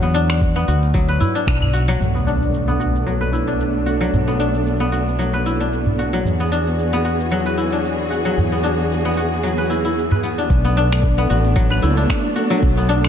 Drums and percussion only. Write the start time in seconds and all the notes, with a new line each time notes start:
0.15 open hi-hat, shaker
0.30 finger snap, open hi-hat, claves, shaker
0.41 kick, open hi-hat, shaker
0.57 shaker
0.68 open hi-hat, shaker
0.83 open hi-hat, shaker
0.94 kick, open hi-hat, shaker
1.09 open hi-hat, shaker
1.21 udu, shaker
1.36 open hi-hat, shaker
1.47 finger snap, kick, open hi-hat, shaker
1.62 udu, claves
1.75 open hi-hat, shaker
1.89 open hi-hat, shaker
2.01 udu, shaker
2.17 shaker
2.28 shaker
2.43 shaker
2.54 shaker
2.69 shaker
2.81 shaker
2.96 shaker
3.08 shaker
3.22 shaker
3.34 shaker
3.48 shaker
3.61 shaker
3.87 shaker
4.02 shaker
4.13 udu, shaker
4.28 shaker
4.40 shaker
4.55 shaker
4.67 shaker
4.82 shaker
4.94 shaker
5.09 shaker
5.21 shaker
5.35 shaker
5.47 shaker
5.62 shaker
5.73 shaker
5.86 udu
6.00 shaker
6.14 shaker
6.25 udu, shaker
6.41 shaker
6.53 shaker
6.67 shaker
6.79 shaker
6.94 shaker
7.06 shaker
7.20 shaker
7.32 shaker
7.47 shaker
7.59 shaker
7.74 shaker
7.86 shaker
8.12 shaker
8.27 shaker
8.38 udu, shaker
8.53 shaker
8.66 shaker
8.80 shaker
8.92 shaker
9.06 shaker
9.18 shaker
9.33 shaker
9.45 shaker
9.60 shaker
9.72 shaker
9.86 shaker
9.99 shaker
10.12 udu
10.25 shaker
10.40 shaker
10.50 kick, open hi-hat, shaker
10.66 shaker
10.78 shaker
10.93 finger snap, open hi-hat, claves, shaker
11.03 kick, open hi-hat, shaker
11.19 shaker
11.30 open hi-hat, shaker
11.45 open hi-hat, shaker
11.57 kick, open hi-hat, shaker
11.72 claves, shaker
11.84 shaker
11.98 open hi-hat, shaker
12.10 finger snap, kick, open hi-hat, shaker
12.37 open hi-hat, shaker
12.51 open hi-hat, shaker
12.63 kick, open hi-hat, shaker
12.78 shaker
12.90 shaker
13.04 finger snap, open hi-hat, claves, shaker